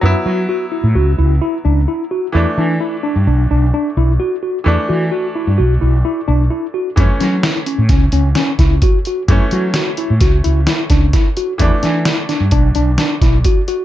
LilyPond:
<<
  \new Staff \with { instrumentName = "Tine electric piano" } { \time 5/4 \key fis \minor \tempo 4 = 130 e'8 fis'8 fis'8 e'8 fis'8 e'8 e'8 d'8 e'8 fis'8 | e'8 d'8 e'8 d'8 d'8 d'8 d'8 e'8 fis'8 fis'8 | e'8 fis'8 fis'8 e'8 fis'8 e'8 e'8 d'8 e'8 fis'8 | e'8 cis'8 e'8 cis'8 cis'8 cis'8 cis'8 e'8 fis'8 fis'8 |
e'8 fis'8 fis'8 e'8 fis'8 e'8 e'8 d'8 e'8 fis'8 | e'8 d'8 e'8 d'8 d'8 d'8 d'8 e'8 fis'8 fis'8 | }
  \new Staff \with { instrumentName = "Grand piano" } { \time 5/4 \key fis \minor <fis b e'>1~ <fis b e'>4 | <e a d'>1~ <e a d'>4 | <e a d'>1~ <e a d'>4 | <e a cis'>1~ <e a cis'>4 |
<e a cis'>1~ <e a cis'>4 | <e a d'>1~ <e a d'>4 | }
  \new Staff \with { instrumentName = "Fretless electric bass" } { \clef bass \time 5/4 \key fis \minor fis,16 r16 fis8 r8. a,16 cis,8 cis,8 r8 cis,8 r4 | e,16 r16 e8 r8. g,16 b,,8 b,,8 r8 b,,8 r4 | e,16 r16 e8 r8. g,16 b,,8 b,,8 r8 b,,8 r4 | fis,16 r16 fis8 r8. a,16 cis,8 cis,8 r8 cis,8 r4 |
fis,16 r16 fis8 r8. a,16 cis,8 cis,8 r8 cis,8 r4 | e,16 r16 e8 r8. g,16 b,,8 b,,8 r8 b,,8 r4 | }
  \new DrumStaff \with { instrumentName = "Drums" } \drummode { \time 5/4 r4 r4 r4 r4 r4 | r4 r4 r4 r4 r4 | r4 r4 r4 r4 r4 | <hh bd>8 <hh sn>8 <hh sn>8 hh8 <hh bd sn>8 hh8 <hh sn>8 <hh bd sn>8 <hh bd>8 hh8 |
<hh bd>8 hh8 <hh sn>8 hh8 <hh bd sn>8 hh8 <hh sn>8 <hh bd sn>8 <hh bd sn>8 hh8 | <hh bd>8 <hh sn>8 <hh sn>8 <hh sn>8 <hh bd>8 hh8 <hh sn>8 <hh bd sn>8 <hh bd>8 hh8 | }
>>